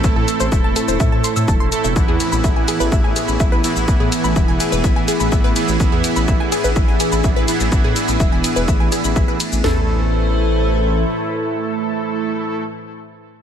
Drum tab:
RD |----------------|--x---x---x---x-|--x---x---x---x-|--x---x---x---x-|
HH |--x---x---x---x-|--x---x---x---x-|--x---x---x---x-|--x---x---x---x-|
SH |x-xxx-xxx-xxx-xx|x-xxx-xxx-xxx-xx|x-xxx-xxx-xxx-xx|x-xxx-xxx-xxx-xx|
SD |----------------|----------------|----------------|----------------|
FT |----------------|----------------|----------------|----------------|
BD |o---o---o---o---|o---o---o---o---|o---o---o---o---|o---o---o---o---|

RD |--x---x---x---x-|----------------|----------------|
HH |--x---x---x---x-|----------------|----------------|
SH |x-xxx-xxx-xxx-xx|----------------|----------------|
SD |----------------|o---------------|----------------|
FT |----------------|o---------------|----------------|
BD |o---o---o---o---|----------------|----------------|